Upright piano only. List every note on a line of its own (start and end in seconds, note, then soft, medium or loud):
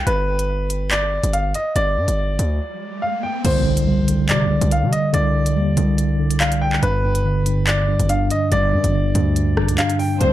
0.07 0.87 B4 loud
0.91 1.31 D5 medium
1.33 1.50 F5 medium
1.55 1.71 D#5 medium
1.76 2.99 D5 loud
3.02 3.19 F5 medium
3.23 3.40 G5 medium
3.45 4.25 C5 medium
4.29 4.69 D5 medium
4.72 4.88 F5 medium
4.92 5.09 D#5 medium
5.14 6.37 D5 medium
6.40 6.57 F5 medium
6.61 6.78 G5 medium
6.83 7.63 B4 loud
7.67 8.07 D5 medium
8.10 8.26 F5 medium
8.31 8.47 D#5 medium
8.52 9.75 D5 loud
9.78 9.95 F5 medium
9.99 10.16 G5 medium
10.21 10.33 C5 medium